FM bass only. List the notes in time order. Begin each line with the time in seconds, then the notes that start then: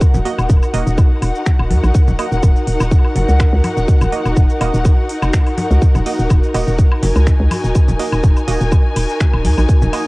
0.14 D#1
0.38 D#1
0.50 D#1
0.74 D#1
0.87 D#1
1.22 D#1
1.59 D#1
1.70 D#2
1.84 A#1
2.08 D#1
2.32 D#1
2.43 D#1
2.67 D#1
2.80 D#1
3.16 F1
3.29 C#2
3.53 C#2
3.77 D#1
4.01 D#1
4.25 D#1
4.37 D#1
4.61 D#1
4.74 D#1
5.22 F1
5.71 C#2
5.95 D#1
6.19 D#1
6.30 D#1
6.54 D#1
6.67 D#1
7.03 F1
7.16 C#2
7.40 C#2
7.64 D#1
7.88 D#1
8.13 D#1
8.24 D#1
8.48 D#1
8.61 D#1
8.96 D#1
9.34 D#1
9.45 D#2
9.58 A#1
9.82 D#1